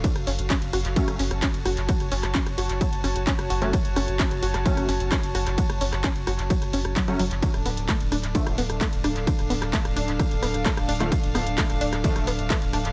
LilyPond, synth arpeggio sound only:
\new Staff \with { instrumentName = "Synth arpeggio sound" } { \time 4/4 \key fis \minor \tempo 4 = 130 fis16 r16 cis'16 r16 cis'16 r16 fis'16 r16 fis16 r16 cis'16 r16 cis'16 r16 fis'16 r16 | fis16 r16 cis'16 r16 cis'16 r16 fis'16 r16 fis16 r16 cis'16 r16 cis'16 r16 fis'16 r16 | fis16 r16 cis'16 r16 cis'16 r16 fis'16 r16 fis16 r16 cis'16 r16 cis'16 r16 fis'16 r16 | fis16 r16 cis'16 r16 cis'16 r16 fis'16 r16 fis16 r16 cis'16 r16 fis16 fis16 fis16 r16 |
d16 r16 b16 r16 a16 r16 d'16 r16 d16 r16 b16 r16 a16 r16 d'16 r16 | d16 r16 b16 r16 a16 r16 d'16 r16 d16 r16 b16 r16 a16 r16 d'16 r16 | d16 r16 b16 r16 a16 r16 d'16 r16 d16 r16 b16 r16 a16 r16 d'16 r16 | }